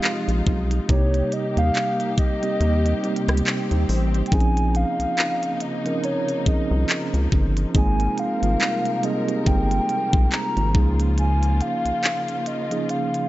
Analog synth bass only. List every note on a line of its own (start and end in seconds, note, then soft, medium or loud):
0.28 0.42 A#1 medium
0.47 0.80 B1 medium
0.89 1.23 C2 loud
1.57 1.71 D#2 medium
2.60 2.94 D#2 loud
3.28 3.42 C#2 medium
3.71 3.85 D#2 medium
3.89 4.23 A1 loud
4.32 4.85 A#1 loud
4.99 5.07 C2 soft
6.46 6.56 C2 soft
6.71 6.85 C2 medium
7.14 7.28 C#2 medium
7.32 7.66 G1 medium
7.75 8.08 G#1 loud
8.42 8.57 G#1 medium
9.47 9.80 G1 medium
10.13 10.28 A#1 medium
10.57 10.76 G#1 medium
10.75 11.61 C#2 loud
11.85 11.92 C2 soft